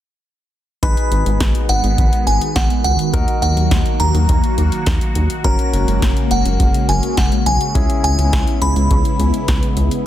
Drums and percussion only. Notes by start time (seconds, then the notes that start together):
0.83 kick, closed hi-hat
0.97 closed hi-hat
1.12 closed hi-hat
1.26 closed hi-hat
1.40 kick, snare, closed hi-hat
1.55 closed hi-hat
1.69 closed hi-hat
1.84 closed hi-hat
1.98 kick, closed hi-hat
2.13 closed hi-hat
2.27 closed hi-hat
2.41 closed hi-hat
2.56 kick, snare, closed hi-hat
2.70 closed hi-hat
2.84 closed hi-hat
2.99 closed hi-hat
3.14 kick, closed hi-hat
3.28 closed hi-hat
3.43 closed hi-hat
3.57 closed hi-hat
3.71 kick, snare, closed hi-hat
3.86 closed hi-hat
4.00 closed hi-hat
4.15 closed hi-hat
4.29 kick, closed hi-hat
4.44 closed hi-hat
4.58 closed hi-hat
4.72 closed hi-hat
4.86 kick, snare, closed hi-hat
5.01 closed hi-hat
5.15 closed hi-hat
5.30 closed hi-hat
5.44 kick, closed hi-hat
5.59 closed hi-hat
5.73 closed hi-hat
5.88 closed hi-hat
6.02 kick, snare, closed hi-hat
6.17 closed hi-hat
6.31 closed hi-hat
6.45 closed hi-hat
6.60 kick, closed hi-hat
6.74 closed hi-hat
6.89 closed hi-hat
7.03 closed hi-hat
7.17 kick, snare, closed hi-hat
7.32 closed hi-hat
7.46 closed hi-hat
7.61 closed hi-hat
7.75 kick, closed hi-hat
7.90 closed hi-hat
8.04 closed hi-hat
8.19 closed hi-hat
8.33 kick, snare, closed hi-hat
8.47 closed hi-hat
8.62 closed hi-hat
8.76 closed hi-hat
8.91 kick, closed hi-hat
9.05 closed hi-hat
9.20 closed hi-hat
9.34 closed hi-hat
9.48 kick, snare, closed hi-hat
9.63 closed hi-hat
9.77 closed hi-hat
9.91 closed hi-hat